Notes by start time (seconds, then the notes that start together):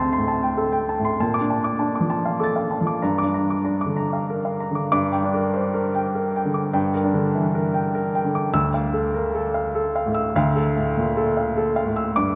Already playing: D2 C6
0.00 C4 A5
0.13 C6
0.18 A2
0.28 A5
0.43 G5
0.57 A4
0.72 G5
0.89 A5
0.99 A2
1.05 C6
1.20 A#2 A5
1.34 D6
1.41 D4
1.50 A5
1.64 D6
1.79 D4 A5
1.95 D6
2.01 F3
2.10 A5
2.25 F5
2.40 A4 D6 A6
2.56 F5
2.71 A5
2.81 F3
2.87 D6
3.02 G2 A#5
3.18 D6
3.23 D4
3.34 A#5
3.50 D6
3.65 D4 A#5
3.81 D6
3.86 D3
3.97 A#5
4.13 F5
4.30 A#4
4.45 F5
4.60 A#5
4.71 D3
4.75 D6
4.92 G2 D6
5.12 G5
5.24 D4
5.34 A#4
5.54 C5
5.74 A#4
5.95 G5
6.15 A#4
6.36 G5
6.45 D3
6.54 D6
6.73 G2 G5
6.94 A#4
7.04 D4
7.14 D3
7.35 E3
7.55 A#4
7.74 G5
7.95 A#4
8.15 G5
8.25 D3
8.35 D6
8.53 D2 E6
8.74 F5
8.93 A4
9.14 A#4
9.35 A4
9.54 F5
9.75 A4
9.96 F5
10.06 A2
10.15 E6
10.36 D2 F5
10.56 A4
10.77 A2
10.97 A#2
11.17 A4
11.37 F5
11.57 A4
11.76 F5
11.86 A2
11.96 E6
12.16 G2 D6